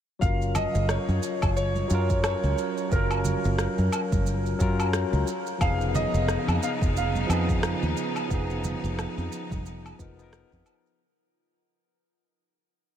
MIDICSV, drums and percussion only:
0, 0, Header, 1, 2, 480
1, 0, Start_track
1, 0, Key_signature, 6, "major"
1, 0, Tempo, 674157
1, 157, Time_signature, 4, 2, 24, 8
1, 9232, End_track
2, 0, Start_track
2, 0, Title_t, "Drums"
2, 156, Note_on_c, 9, 36, 101
2, 158, Note_on_c, 9, 82, 38
2, 227, Note_off_c, 9, 36, 0
2, 229, Note_off_c, 9, 82, 0
2, 297, Note_on_c, 9, 82, 18
2, 368, Note_off_c, 9, 82, 0
2, 391, Note_on_c, 9, 77, 72
2, 393, Note_on_c, 9, 82, 72
2, 394, Note_on_c, 9, 63, 56
2, 396, Note_on_c, 9, 64, 88
2, 462, Note_off_c, 9, 77, 0
2, 465, Note_off_c, 9, 63, 0
2, 465, Note_off_c, 9, 82, 0
2, 467, Note_off_c, 9, 64, 0
2, 533, Note_on_c, 9, 82, 31
2, 605, Note_off_c, 9, 82, 0
2, 633, Note_on_c, 9, 37, 88
2, 635, Note_on_c, 9, 82, 37
2, 704, Note_off_c, 9, 37, 0
2, 706, Note_off_c, 9, 82, 0
2, 776, Note_on_c, 9, 82, 20
2, 847, Note_off_c, 9, 82, 0
2, 874, Note_on_c, 9, 82, 71
2, 945, Note_off_c, 9, 82, 0
2, 1012, Note_on_c, 9, 77, 78
2, 1015, Note_on_c, 9, 36, 101
2, 1015, Note_on_c, 9, 82, 29
2, 1083, Note_off_c, 9, 77, 0
2, 1086, Note_off_c, 9, 36, 0
2, 1086, Note_off_c, 9, 82, 0
2, 1116, Note_on_c, 9, 82, 39
2, 1187, Note_off_c, 9, 82, 0
2, 1249, Note_on_c, 9, 63, 61
2, 1252, Note_on_c, 9, 82, 20
2, 1320, Note_off_c, 9, 63, 0
2, 1323, Note_off_c, 9, 82, 0
2, 1353, Note_on_c, 9, 82, 73
2, 1424, Note_off_c, 9, 82, 0
2, 1493, Note_on_c, 9, 82, 31
2, 1495, Note_on_c, 9, 36, 88
2, 1564, Note_off_c, 9, 82, 0
2, 1566, Note_off_c, 9, 36, 0
2, 1593, Note_on_c, 9, 37, 98
2, 1593, Note_on_c, 9, 77, 78
2, 1595, Note_on_c, 9, 82, 42
2, 1664, Note_off_c, 9, 37, 0
2, 1664, Note_off_c, 9, 77, 0
2, 1666, Note_off_c, 9, 82, 0
2, 1735, Note_on_c, 9, 82, 20
2, 1806, Note_off_c, 9, 82, 0
2, 1838, Note_on_c, 9, 82, 65
2, 1909, Note_off_c, 9, 82, 0
2, 1976, Note_on_c, 9, 82, 30
2, 2047, Note_off_c, 9, 82, 0
2, 2077, Note_on_c, 9, 36, 105
2, 2077, Note_on_c, 9, 82, 40
2, 2148, Note_off_c, 9, 36, 0
2, 2148, Note_off_c, 9, 82, 0
2, 2211, Note_on_c, 9, 77, 68
2, 2214, Note_on_c, 9, 82, 20
2, 2283, Note_off_c, 9, 77, 0
2, 2285, Note_off_c, 9, 82, 0
2, 2310, Note_on_c, 9, 63, 64
2, 2313, Note_on_c, 9, 82, 69
2, 2314, Note_on_c, 9, 64, 84
2, 2381, Note_off_c, 9, 63, 0
2, 2384, Note_off_c, 9, 82, 0
2, 2385, Note_off_c, 9, 64, 0
2, 2452, Note_on_c, 9, 82, 34
2, 2523, Note_off_c, 9, 82, 0
2, 2552, Note_on_c, 9, 37, 93
2, 2555, Note_on_c, 9, 82, 39
2, 2623, Note_off_c, 9, 37, 0
2, 2626, Note_off_c, 9, 82, 0
2, 2693, Note_on_c, 9, 82, 22
2, 2764, Note_off_c, 9, 82, 0
2, 2794, Note_on_c, 9, 77, 75
2, 2797, Note_on_c, 9, 82, 73
2, 2865, Note_off_c, 9, 77, 0
2, 2868, Note_off_c, 9, 82, 0
2, 2935, Note_on_c, 9, 36, 103
2, 2936, Note_on_c, 9, 82, 34
2, 2938, Note_on_c, 9, 63, 84
2, 3006, Note_off_c, 9, 36, 0
2, 3007, Note_off_c, 9, 82, 0
2, 3009, Note_off_c, 9, 63, 0
2, 3036, Note_on_c, 9, 82, 43
2, 3108, Note_off_c, 9, 82, 0
2, 3175, Note_on_c, 9, 82, 21
2, 3247, Note_off_c, 9, 82, 0
2, 3276, Note_on_c, 9, 36, 101
2, 3276, Note_on_c, 9, 82, 74
2, 3347, Note_off_c, 9, 36, 0
2, 3347, Note_off_c, 9, 82, 0
2, 3415, Note_on_c, 9, 77, 72
2, 3417, Note_on_c, 9, 82, 33
2, 3486, Note_off_c, 9, 77, 0
2, 3488, Note_off_c, 9, 82, 0
2, 3512, Note_on_c, 9, 37, 102
2, 3515, Note_on_c, 9, 82, 44
2, 3584, Note_off_c, 9, 37, 0
2, 3586, Note_off_c, 9, 82, 0
2, 3653, Note_on_c, 9, 82, 22
2, 3724, Note_off_c, 9, 82, 0
2, 3754, Note_on_c, 9, 82, 68
2, 3826, Note_off_c, 9, 82, 0
2, 3892, Note_on_c, 9, 82, 33
2, 3963, Note_off_c, 9, 82, 0
2, 3993, Note_on_c, 9, 77, 72
2, 3994, Note_on_c, 9, 36, 108
2, 3996, Note_on_c, 9, 82, 41
2, 4064, Note_off_c, 9, 77, 0
2, 4065, Note_off_c, 9, 36, 0
2, 4067, Note_off_c, 9, 82, 0
2, 4136, Note_on_c, 9, 82, 21
2, 4207, Note_off_c, 9, 82, 0
2, 4231, Note_on_c, 9, 63, 69
2, 4233, Note_on_c, 9, 64, 88
2, 4238, Note_on_c, 9, 82, 77
2, 4302, Note_off_c, 9, 63, 0
2, 4305, Note_off_c, 9, 64, 0
2, 4309, Note_off_c, 9, 82, 0
2, 4373, Note_on_c, 9, 82, 34
2, 4444, Note_off_c, 9, 82, 0
2, 4474, Note_on_c, 9, 37, 88
2, 4477, Note_on_c, 9, 82, 40
2, 4545, Note_off_c, 9, 37, 0
2, 4548, Note_off_c, 9, 82, 0
2, 4617, Note_on_c, 9, 77, 76
2, 4619, Note_on_c, 9, 82, 22
2, 4688, Note_off_c, 9, 77, 0
2, 4690, Note_off_c, 9, 82, 0
2, 4719, Note_on_c, 9, 82, 81
2, 4790, Note_off_c, 9, 82, 0
2, 4853, Note_on_c, 9, 36, 102
2, 4859, Note_on_c, 9, 82, 33
2, 4924, Note_off_c, 9, 36, 0
2, 4930, Note_off_c, 9, 82, 0
2, 4959, Note_on_c, 9, 82, 45
2, 5031, Note_off_c, 9, 82, 0
2, 5092, Note_on_c, 9, 63, 67
2, 5095, Note_on_c, 9, 82, 22
2, 5163, Note_off_c, 9, 63, 0
2, 5166, Note_off_c, 9, 82, 0
2, 5196, Note_on_c, 9, 77, 74
2, 5199, Note_on_c, 9, 82, 78
2, 5268, Note_off_c, 9, 77, 0
2, 5270, Note_off_c, 9, 82, 0
2, 5333, Note_on_c, 9, 36, 98
2, 5336, Note_on_c, 9, 82, 31
2, 5404, Note_off_c, 9, 36, 0
2, 5407, Note_off_c, 9, 82, 0
2, 5433, Note_on_c, 9, 37, 99
2, 5435, Note_on_c, 9, 82, 46
2, 5504, Note_off_c, 9, 37, 0
2, 5506, Note_off_c, 9, 82, 0
2, 5572, Note_on_c, 9, 82, 21
2, 5644, Note_off_c, 9, 82, 0
2, 5674, Note_on_c, 9, 82, 73
2, 5745, Note_off_c, 9, 82, 0
2, 5809, Note_on_c, 9, 77, 70
2, 5812, Note_on_c, 9, 82, 30
2, 5880, Note_off_c, 9, 77, 0
2, 5883, Note_off_c, 9, 82, 0
2, 5915, Note_on_c, 9, 36, 107
2, 5915, Note_on_c, 9, 82, 42
2, 5986, Note_off_c, 9, 36, 0
2, 5986, Note_off_c, 9, 82, 0
2, 6052, Note_on_c, 9, 82, 19
2, 6123, Note_off_c, 9, 82, 0
2, 6153, Note_on_c, 9, 63, 69
2, 6153, Note_on_c, 9, 82, 78
2, 6154, Note_on_c, 9, 64, 91
2, 6224, Note_off_c, 9, 63, 0
2, 6224, Note_off_c, 9, 82, 0
2, 6225, Note_off_c, 9, 64, 0
2, 6297, Note_on_c, 9, 82, 34
2, 6368, Note_off_c, 9, 82, 0
2, 6398, Note_on_c, 9, 37, 86
2, 6398, Note_on_c, 9, 77, 69
2, 6400, Note_on_c, 9, 82, 42
2, 6469, Note_off_c, 9, 37, 0
2, 6469, Note_off_c, 9, 77, 0
2, 6472, Note_off_c, 9, 82, 0
2, 6538, Note_on_c, 9, 82, 21
2, 6609, Note_off_c, 9, 82, 0
2, 6637, Note_on_c, 9, 82, 75
2, 6709, Note_off_c, 9, 82, 0
2, 6769, Note_on_c, 9, 63, 79
2, 6774, Note_on_c, 9, 36, 105
2, 6778, Note_on_c, 9, 82, 33
2, 6840, Note_off_c, 9, 63, 0
2, 6846, Note_off_c, 9, 36, 0
2, 6849, Note_off_c, 9, 82, 0
2, 6877, Note_on_c, 9, 82, 43
2, 6948, Note_off_c, 9, 82, 0
2, 7018, Note_on_c, 9, 77, 70
2, 7021, Note_on_c, 9, 82, 22
2, 7089, Note_off_c, 9, 77, 0
2, 7092, Note_off_c, 9, 82, 0
2, 7115, Note_on_c, 9, 36, 98
2, 7118, Note_on_c, 9, 82, 78
2, 7186, Note_off_c, 9, 36, 0
2, 7189, Note_off_c, 9, 82, 0
2, 7256, Note_on_c, 9, 82, 34
2, 7327, Note_off_c, 9, 82, 0
2, 7353, Note_on_c, 9, 37, 100
2, 7355, Note_on_c, 9, 82, 47
2, 7424, Note_off_c, 9, 37, 0
2, 7427, Note_off_c, 9, 82, 0
2, 7493, Note_on_c, 9, 36, 56
2, 7493, Note_on_c, 9, 82, 23
2, 7564, Note_off_c, 9, 36, 0
2, 7565, Note_off_c, 9, 82, 0
2, 7589, Note_on_c, 9, 77, 65
2, 7591, Note_on_c, 9, 82, 74
2, 7660, Note_off_c, 9, 77, 0
2, 7662, Note_off_c, 9, 82, 0
2, 7735, Note_on_c, 9, 82, 34
2, 7806, Note_off_c, 9, 82, 0
2, 9232, End_track
0, 0, End_of_file